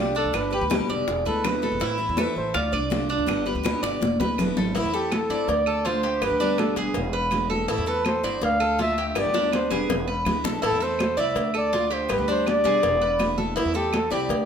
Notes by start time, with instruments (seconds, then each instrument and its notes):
Already playing: upright bass C2, steel-string acoustic guitar D3 A3 D4 F4, cuban tres D5
0.00 muted trumpet G4
0.15 steel-string acoustic guitar A3 D4 F4, cuban tres D4, muted trumpet A4, high conga
0.25 upright bass D2
0.33 upright bass G1, steel-string acoustic guitar B2 D3 G3 B3 G4, muted trumpet B4, high bongo, high conga, claves
0.51 steel-string acoustic guitar G3 B3 G4, muted trumpet G4, cuban tres B4, high bongo, high conga
0.61 upright bass D2
0.70 steel-string acoustic guitar B2 D3 G3 B3 G4, high bongo, high conga, claves
0.89 upright bass F1, cuban tres D5, high bongo, high conga
1.08 upright bass E1, muted trumpet G#4, muted steel-string acoustic guitar stroke, high bongo, high conga
1.25 upright bass D2, steel-string acoustic guitar G#3 B3 E4, muted trumpet A4, cuban tres B4, high conga
1.44 steel-string acoustic guitar B2 D3 G#3 B3 E4, muted trumpet B4, high bongo, low bongo, high conga, claves
1.62 steel-string acoustic guitar G#3 B3 E4, cuban tres A4, high bongo, high conga
1.72 upright bass E1
1.80 upright bass A1, steel-string acoustic guitar E3 A3 C4 E4, cuban tres E4, high bongo, high conga
1.98 steel-string acoustic guitar A3 C4 E4, high conga
2.09 upright bass E2
2.17 steel-string acoustic guitar E3 A3 C4 E4, cuban tres A4, muted trumpet B4, high bongo, high conga, claves
2.36 upright bass A1, muted trumpet C5, high conga
2.54 upright bass D2, cuban tres F4, muted trumpet D5, muted steel-string acoustic guitar stroke, high bongo, high conga
2.72 upright bass C2, steel-string acoustic guitar A3 D4 F4, cuban tres D5, high conga, claves
2.90 steel-string acoustic guitar D3 A3 D4 F4, high bongo, low bongo, high conga
3.09 steel-string acoustic guitar A3 D4 F4, cuban tres D4, high conga
3.18 upright bass D2
3.26 upright bass G1, steel-string acoustic guitar B2 D3 G3 B3 G4, high bongo, high conga, claves
3.46 steel-string acoustic guitar G3 B3 G4, cuban tres B4, high bongo, high conga
3.55 upright bass D2
3.63 steel-string acoustic guitar B2 D3 G3 B3 G4, high bongo, high conga, claves
3.83 upright bass G1, cuban tres D5, high bongo, high conga
4.01 upright bass E1, muted steel-string acoustic guitar stroke, high bongo, high conga
4.20 upright bass D2, steel-string acoustic guitar G#3 B3 E4, cuban tres B4, low bongo, high conga
4.38 upright bass E1, steel-string acoustic guitar B2 D3 G#3 B3 E4, low bongo, low conga, claves
4.57 upright bass G#1, steel-string acoustic guitar G#3 B3 E4, cuban tres A4, low bongo, low conga
4.75 upright bass A1, steel-string acoustic guitar E3 A3 C4 E4, cuban tres E4, muted trumpet E4, cowbell, high conga
4.84 upright bass E2
4.93 steel-string acoustic guitar A3 C4 E4, muted trumpet G4, cuban tres A4, high conga
5.12 muted trumpet A4, cowbell, high conga, claves
5.30 upright bass G1, steel-string acoustic guitar A3 C4 E4, cuban tres D5, cowbell, high conga
5.48 upright bass D2, muted trumpet D5, muted steel-string acoustic guitar stroke, cowbell, high conga
5.66 cuban tres A4, high conga, claves
5.85 steel-string acoustic guitar D3 A3 D4 F4, cuban tres F4, muted trumpet C5, cowbell, high conga
6.03 cuban tres G4, cowbell, high conga
6.21 upright bass G1, steel-string acoustic guitar B2 D3 G3 B3 G4, muted trumpet B4, cowbell, high conga, claves
6.30 upright bass D2
6.40 steel-string acoustic guitar D3 G3 B3 G4, cuban tres D4, high conga
6.58 muted trumpet A4, cowbell, high conga, claves
6.76 upright bass E1, steel-string acoustic guitar D3 G3 B3 G4, cuban tres G#4, muted trumpet G#4, cowbell, high conga
6.94 upright bass E1, muted steel-string acoustic guitar stroke, cowbell, high conga
7.13 cuban tres B4, high conga
7.31 steel-string acoustic guitar D3 G#3 B3 E4, cowbell, high conga, claves
7.50 cuban tres A4, high conga
7.68 upright bass A1, steel-string acoustic guitar E3 A3 C4 E4, cuban tres E4, muted trumpet A4, cowbell, high conga
7.78 upright bass E2
7.86 steel-string acoustic guitar A3 C4 E4, cuban tres A4, muted trumpet B4, high conga
8.05 muted trumpet C5, cowbell, high conga, claves
8.23 upright bass G1, steel-string acoustic guitar A3 C4 E4, cuban tres D5, cowbell, high conga
8.41 upright bass D2, muted trumpet F5, muted steel-string acoustic guitar stroke, cowbell, high conga
8.60 cuban tres A4, high conga, claves
8.78 steel-string acoustic guitar D3 A3 D4 F4, cuban tres F4, muted trumpet E5, cowbell, high conga
8.98 cuban tres G4, cowbell, high conga
9.09 muted trumpet E5
9.15 upright bass G1, steel-string acoustic guitar B2 D3 G3 B3 G4, muted trumpet D5, cowbell, high bongo, high conga, claves
9.25 upright bass D2
9.34 steel-string acoustic guitar D3 G3 B3 G4, cuban tres D4, high bongo, high conga
9.53 muted trumpet C5, cowbell, high conga, claves
9.70 upright bass E1, steel-string acoustic guitar D3 G3 B3 G4, cuban tres G#4, muted trumpet B4, cowbell, low bongo, high conga
9.89 upright bass E1, muted steel-string acoustic guitar stroke, cowbell, low bongo, high conga
10.07 cuban tres B4, high conga
10.25 upright bass D2, steel-string acoustic guitar D3 G#3 B3 E4, cowbell, low bongo, high conga, claves
10.44 upright bass B1, cuban tres A4, low bongo, high conga
10.62 upright bass A1, steel-string acoustic guitar E3 A3 C4 E4, cuban tres E4, muted trumpet A4, cowbell, high conga
10.72 upright bass E2
10.80 steel-string acoustic guitar A3 C4 E4, cuban tres A4, muted trumpet C5, high conga
10.99 cowbell, high conga, claves
11.17 upright bass C2, steel-string acoustic guitar A3 C4 E4, cuban tres D5, muted trumpet E5, cowbell, high conga
11.35 upright bass D2, muted steel-string acoustic guitar stroke, cowbell, high conga
11.54 cuban tres A4, muted trumpet D5, high conga, claves
11.73 steel-string acoustic guitar D3 A3 D4 F4, cuban tres F4, cowbell, high conga
11.90 cuban tres G4, muted trumpet C5, cowbell, high conga
12.09 upright bass G1, steel-string acoustic guitar B2 D3 G3 B3 G4, muted trumpet B4, cowbell, high conga, claves
12.18 upright bass D2
12.28 steel-string acoustic guitar D3 G3 B3 G4, cuban tres D4, muted trumpet C5, high conga
12.47 muted trumpet D5, cowbell, high conga, claves
12.64 upright bass E1, steel-string acoustic guitar D3 G3 B3 G4, cuban tres G#4, cowbell, high conga
12.83 upright bass E1, muted steel-string acoustic guitar stroke, cowbell, high conga
13.02 cuban tres B4, high conga
13.19 steel-string acoustic guitar D3 G#3 B3 E4, cowbell, high conga, claves
13.38 cuban tres A4, high conga
13.56 upright bass A1, steel-string acoustic guitar E3 A3 C4 E4, cuban tres E4, muted trumpet E4, cowbell, high conga
13.65 upright bass E2
13.74 steel-string acoustic guitar A3 C4 E4, muted trumpet G4, cuban tres A4, high conga
13.93 muted trumpet A4, cowbell, high conga, claves
14.10 upright bass C2, steel-string acoustic guitar A3 C4 E4, muted trumpet G4, cuban tres D5, cowbell, high conga
14.29 upright bass D2, muted steel-string acoustic guitar stroke, cowbell, high conga